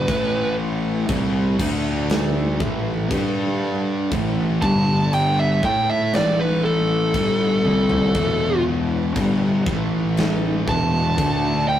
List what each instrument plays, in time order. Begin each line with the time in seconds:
Already playing: lead electric guitar B4
0.07 fingered electric bass A1, distorted electric guitar A2 E3 A3, string machine A3 E4 B4, kick, crash
1.08 fingered electric bass C2, distorted electric guitar C3 G3 C4, kick, crash
1.59 fingered electric bass D2, distorted electric guitar D3 A3 D4, string machine D4 A4 E5, kick, crash
2.10 snare, crash
2.60 fingered electric bass A1, distorted electric guitar A2 E3 A3, string machine A3 E4 B4, kick
3.11 fingered electric bass G2, distorted electric guitar G3 D4 G4, string machine G3 D4 A4, kick, crash
4.11 fingered electric bass A1, distorted electric guitar A2 E3 A3, string machine A3 E4 B4, kick, crash
4.61 fingered electric bass G1, distorted electric guitar G2 D3 G3, string machine G3 D4 A4, lead electric guitar A5, kick
5.13 lead electric guitar G5, crash
5.39 lead electric guitar E5
5.63 fingered electric bass A2, distorted electric guitar A3 E4 A4, string machine A3 E4 B4, lead electric guitar G5, kick, snare
5.90 lead electric guitar E5
6.13 fingered electric bass A1, distorted electric guitar A2 E3 A3, lead electric guitar D5, snare, crash
6.40 lead electric guitar B4
6.65 lead electric guitar A4
7.14 fingered electric bass G1, distorted electric guitar G2 D3 G3, kick, crash
7.65 fingered electric bass C2, distorted electric guitar C3 G3 C4, high tom
7.90 floor tom
8.14 fingered electric bass E1, distorted electric guitar E2 B2 E3, string machine E3 B3 F#4, kick, crash
9.16 fingered electric bass G1, distorted electric guitar G2 D3 G3, kick, crash
9.66 fingered electric bass A1, distorted electric guitar A2 E3 A3, string machine A3 E4 B4, kick, snare
10.17 snare, crash
10.67 fingered electric bass E1, distorted electric guitar E2 B2 E3, string machine E3 B3 F#4, lead electric guitar A5, kick
11.16 fingered electric bass D2, string machine D3 A3 E4, distorted electric guitar D3 A3 D4, kick, crash
11.69 lead electric guitar G5